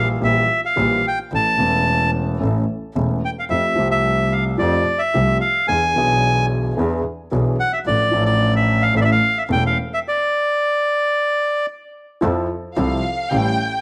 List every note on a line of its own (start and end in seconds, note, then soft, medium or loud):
0.00 0.17 A#1 medium
0.00 0.17 A#2 medium
0.00 0.16 E3 medium
0.00 0.17 G3 medium
0.00 0.17 A#3 medium
0.00 0.18 G4 medium
0.21 0.44 A#1 medium
0.21 0.45 A#1 medium
0.21 0.44 A#2 medium
0.21 0.44 E3 medium
0.21 0.44 G3 medium
0.21 0.44 A#3 medium
0.21 0.44 G4 medium
0.21 0.61 E5 medium
0.65 1.06 F5 medium
0.76 0.99 A#1 medium
0.76 0.99 A#2 medium
0.76 0.99 E3 medium
0.76 0.99 G3 medium
0.76 0.99 A#3 medium
0.76 0.99 G4 medium
1.07 1.19 G5 medium
1.32 1.54 A1 medium
1.32 1.54 A2 soft
1.32 1.54 E3 soft
1.32 1.54 A3 soft
1.32 1.54 C#4 soft
1.32 1.55 A4 soft
1.32 2.11 A5 medium
1.58 2.36 E1 medium
1.58 2.36 E2 medium
1.58 2.36 E3 medium
1.58 2.36 A3 medium
1.58 2.37 C#4 medium
1.58 2.37 A4 medium
2.40 2.63 A1 medium
2.40 2.63 A2 medium
2.40 2.63 E3 medium
2.40 2.63 A3 soft
2.40 2.63 C#4 soft
2.40 2.63 A4 medium
2.95 3.18 E1 medium
2.95 3.18 E2 medium
2.95 3.18 E3 medium
2.95 3.18 A3 medium
2.95 3.18 C#4 soft
2.95 3.19 A4 medium
3.25 3.30 G5 medium
3.39 3.45 F5 medium
3.50 3.73 F2 medium
3.50 3.74 F2 medium
3.50 3.74 F3 soft
3.50 3.74 A3 soft
3.50 3.74 C4 soft
3.50 3.74 G4 soft
3.50 3.88 E5 medium
3.76 4.55 C2 medium
3.76 4.56 C2 medium
3.76 4.56 C3 medium
3.76 4.54 F3 medium
3.76 4.55 A3 medium
3.76 4.56 C4 medium
3.80 4.57 G4 medium
3.91 4.33 E5 medium
4.32 4.44 F5 medium
4.58 4.82 F2 medium
4.58 4.83 F2 medium
4.58 4.82 F3 medium
4.58 4.82 A3 medium
4.58 4.82 C4 soft
4.58 4.82 G4 medium
4.58 5.01 D5 medium
4.99 5.38 E5 medium
5.14 5.37 C2 medium
5.14 5.37 C3 medium
5.14 5.37 F3 medium
5.14 5.37 A3 medium
5.14 5.37 C4 medium
5.14 5.37 G4 medium
5.41 5.66 F5 medium
5.68 5.91 E2 soft
5.68 5.92 E2 medium
5.68 5.91 E3 medium
5.68 5.91 B3 soft
5.68 5.91 D4 soft
5.68 5.91 G#4 soft
5.68 6.46 G#5 medium
5.94 6.73 B1 medium
5.94 6.74 B1 medium
5.94 6.74 B2 medium
5.94 6.73 E3 medium
5.94 6.73 B3 medium
5.94 6.74 D4 medium
5.94 6.74 G#4 medium
6.77 7.00 E2 medium
6.77 7.00 E3 medium
6.77 7.00 B3 medium
6.77 7.00 D4 soft
6.77 7.00 G#4 medium
7.31 7.55 B1 medium
7.31 7.55 B2 medium
7.31 7.55 E3 medium
7.31 7.55 B3 medium
7.31 7.55 D4 medium
7.31 7.55 G#4 medium
7.60 7.72 F#5 medium
7.73 7.79 E5 medium
7.86 8.09 A1 medium
7.86 8.10 A1 medium
7.86 8.09 A2 medium
7.86 8.09 F3 soft
7.86 8.10 A3 soft
7.86 8.09 D4 soft
7.86 8.10 A4 soft
7.86 8.24 D5 medium
8.12 8.91 A1 medium
8.12 8.91 A2 medium
8.12 8.90 F3 medium
8.12 8.90 A3 medium
8.12 8.91 D4 medium
8.16 8.92 A4 medium
8.25 8.54 D5 medium
8.56 8.83 E5 medium
8.82 8.94 F5 medium
8.94 9.18 A1 medium
8.94 9.18 A2 medium
8.94 9.17 E3 medium
8.94 9.17 A3 medium
8.94 9.18 C#4 medium
8.94 9.18 A4 medium
8.94 8.99 E5 medium
9.01 9.03 D5 medium
9.01 9.10 E5 medium
9.11 9.38 F5 medium
9.38 9.43 E5 medium
9.49 9.72 E1 medium
9.49 9.73 E1 medium
9.49 9.73 E2 medium
9.49 9.73 E3 medium
9.49 9.73 A3 medium
9.49 9.73 C#4 medium
9.49 9.73 A4 medium
9.49 9.64 G5 medium
9.66 9.78 F5 medium
9.94 9.99 E5 medium
10.08 11.66 D5 medium
12.21 12.45 F2 medium
12.21 12.46 F2 medium
12.21 12.45 F3 medium
12.21 12.45 C4 medium
12.21 12.46 E4 medium
12.21 12.45 A4 medium
12.77 13.00 C2 medium
12.77 13.00 C3 medium
12.77 13.00 F3 medium
12.77 13.00 C4 medium
12.77 13.00 E4 medium
12.77 13.00 A4 medium
12.77 13.28 F5 medium
13.31 13.54 A1 medium
13.31 13.55 A1 medium
13.31 13.54 A2 medium
13.31 13.54 G3 medium
13.31 13.54 C#4 medium
13.31 13.54 E4 medium
13.31 13.55 A4 medium
13.31 13.81 G5 medium